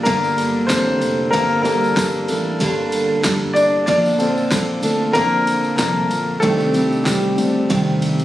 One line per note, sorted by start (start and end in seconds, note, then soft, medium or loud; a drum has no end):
0.00 1.64 G3 medium
0.00 0.07 A#3 medium
0.00 3.57 D4 medium
0.00 1.65 A4 medium
0.00 0.70 A#4 medium
0.00 3.54 D5 loud
0.05 0.66 G1 loud
0.05 0.69 G2 medium
0.05 1.33 D3 medium
0.05 0.67 G3 medium
0.05 0.69 A#3 medium
0.05 0.66 A#3 medium
0.05 0.70 D4 loud
0.05 0.71 A4 medium
0.05 kick loud
0.05 ride medium
0.05 tambourine soft
0.24 tambourine soft
0.38 ride medium
0.38 tambourine medium
0.67 1.02 A1 loud
0.67 1.32 G3 medium
0.67 1.33 A#3 medium
0.67 1.30 C4 medium
0.67 1.34 D4 medium
0.67 1.34 C5 medium
0.67 kick loud
0.67 snare loud
0.67 ride medium
0.67 tambourine loud
0.71 1.34 A4 medium
0.87 floor tom medium
1.02 1.31 F1 loud
1.02 ride medium
1.02 tambourine medium
1.31 2.25 G1 loud
1.31 1.65 G2 medium
1.31 1.65 D3 medium
1.31 1.65 G3 medium
1.31 1.63 A#3 medium
1.31 1.65 A#3 medium
1.31 1.64 D4 medium
1.31 1.63 A4 loud
1.31 1.61 A#4 loud
1.31 kick loud
1.31 ride medium
1.31 tambourine medium
1.62 2.08 G3 medium
1.62 2.09 A#3 medium
1.62 1.96 A#3 medium
1.62 1.97 D4 medium
1.62 1.97 A4 medium
1.62 2.09 A4 medium
1.62 3.60 A#4 medium
1.62 ride medium
1.62 tambourine medium
1.67 1.95 G3 soft
1.84 tambourine soft
1.97 2.29 G3 medium
1.97 2.28 A#3 medium
1.97 2.28 D4 medium
1.97 2.27 A4 medium
1.97 kick loud
1.97 snare loud
1.97 ride medium
1.97 tambourine loud
2.28 2.59 A1 loud
2.28 2.60 G3 medium
2.28 2.60 A#3 soft
2.28 2.60 D4 medium
2.28 2.60 A4 medium
2.28 ride medium
2.28 tambourine medium
2.60 3.84 G1 loud
2.60 3.24 G2 medium
2.60 3.87 D3 medium
2.60 3.22 G3 loud
2.60 3.24 A#3 loud
2.60 3.25 D4 loud
2.60 3.25 A4 loud
2.60 kick loud
2.60 ride medium
2.60 tambourine soft
2.92 ride medium
2.92 tambourine soft
3.23 3.87 G3 medium
3.23 3.88 A#3 medium
3.23 3.88 D4 medium
3.23 3.88 A4 medium
3.23 kick loud
3.23 snare loud
3.23 ride medium
3.23 tambourine loud
3.42 floor tom medium
3.54 3.86 D4 medium
3.54 3.85 D5 loud
3.54 ride medium
3.54 tambourine medium
3.86 4.80 A#1 loud
3.86 4.19 A#2 loud
3.86 4.19 D3 loud
3.86 4.20 F3 medium
3.86 4.19 A#3 loud
3.86 4.19 D4 medium
3.86 4.80 D4 medium
3.86 4.18 A4 medium
3.86 4.79 D5 loud
3.86 kick loud
3.86 ride medium
3.86 tambourine medium
4.06 tambourine soft
4.18 4.63 D3 medium
4.18 4.49 F3 medium
4.18 4.51 A#3 medium
4.18 4.64 C4 medium
4.18 4.51 D4 medium
4.18 4.51 A4 medium
4.18 4.63 A4 medium
4.18 ride medium
4.18 tambourine medium
4.38 tambourine soft
4.51 4.83 F3 medium
4.51 4.83 A#3 medium
4.51 4.83 D4 medium
4.51 4.81 A4 medium
4.51 kick loud
4.51 snare loud
4.51 ride medium
4.51 tambourine loud
4.83 5.13 D2 loud
4.83 5.14 F3 medium
4.83 5.15 A#3 soft
4.83 5.15 D4 medium
4.83 5.15 A4 medium
4.83 ride medium
4.83 tambourine medium
5.13 5.75 A#1 loud
5.13 5.79 A#2 medium
5.13 5.43 D3 medium
5.13 6.42 D3 medium
5.13 5.77 F3 medium
5.13 5.75 A#3 medium
5.13 5.78 A#3 medium
5.13 5.44 C4 medium
5.13 5.79 D4 loud
5.13 5.44 A4 soft
5.13 5.79 A4 medium
5.13 5.75 A#4 loud
5.13 kick loud
5.13 ride medium
5.13 tambourine soft
5.47 ride medium
5.47 tambourine medium
5.64 tambourine soft
5.76 6.08 C2 medium
5.76 6.42 F3 medium
5.76 6.43 A#3 medium
5.76 6.39 A#3 medium
5.76 6.43 D4 medium
5.76 6.43 A#4 medium
5.76 kick loud
5.76 snare loud
5.76 ride medium
5.76 tambourine loud
5.81 6.43 A4 medium
5.97 floor tom medium
6.10 6.40 A#1 loud
6.10 ride medium
6.10 tambourine medium
6.40 7.38 C2 loud
6.40 6.74 C3 loud
6.40 7.34 D#3 medium
6.40 6.74 D#3 medium
6.40 6.74 G3 loud
6.40 7.02 A3 medium
6.40 7.34 C4 medium
6.40 6.75 C4 medium
6.40 7.34 D4 medium
6.40 6.74 D4 loud
6.40 6.73 G4 loud
6.40 7.01 A4 loud
6.40 kick loud
6.40 ride medium
6.40 tambourine soft
6.60 snare soft
6.60 tambourine soft
6.74 7.04 G3 medium
6.74 7.05 C4 medium
6.74 7.06 D4 medium
6.74 7.06 G4 medium
6.74 ride medium
6.74 tambourine medium
6.92 tambourine soft
7.04 7.70 G3 medium
7.04 8.25 G3 medium
7.04 7.70 C4 medium
7.04 7.71 D4 medium
7.04 8.25 G4 medium
7.04 kick loud
7.04 snare loud
7.04 ride medium
7.04 tambourine medium
7.08 7.71 G4 medium
7.38 7.67 D2 loud
7.38 7.66 D3 medium
7.38 7.66 C4 medium
7.38 7.67 D4 medium
7.38 ride medium
7.38 tambourine medium
7.70 8.25 C2 loud
7.70 8.25 C3 medium
7.70 8.25 D#3 loud
7.70 8.25 G3 medium
7.70 8.25 C4 medium
7.70 8.25 D4 medium
7.70 8.25 G4 medium
7.70 kick loud
7.70 ride medium
7.70 tambourine medium
8.02 ride medium
8.02 tambourine soft
8.20 ride medium
8.20 tambourine soft